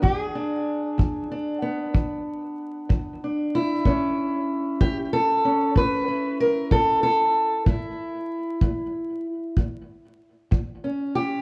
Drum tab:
BD |o--o--o--o--|o--o--o--o--|o--o--o--o--|